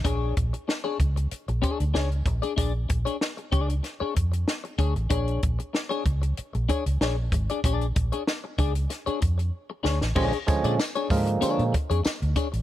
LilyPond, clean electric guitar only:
\new Staff \with { instrumentName = "Clean electric guitar" } { \time 4/4 \key bes \mixolydian \tempo 4 = 95 <d' aes' cis''>8 r8. <d' aes' cis''>16 r4 <d' aes' cis''>16 r16 <d' aes' cis''>16 r8 <d' aes' d''>16 | <d' aes' d''>16 r8 <d' aes' cis''>16 r8 <d' aes' d''>16 r8 <d' aes' cis''>16 r4 <d' aes' cis''>16 r16 | <d' aes' cis''>8 r8. <d' aes' cis''>16 r4 <d' aes' cis''>16 r16 <d' aes' cis''>16 r8 <d' aes' d''>16 | <d' aes' d''>16 r8 <d' aes' cis''>16 r8 <d' aes' d''>16 r8 <d' aes' cis''>16 r4 <d' aes' cis''>16 r16 |
<d' aes' cis''>16 r8 <d' aes' d''>16 r16 <d' aes' cis''>16 r8 <d' aes' cis''>16 r8 <d' aes' cis''>16 r8 <d' aes' cis''>16 r16 | }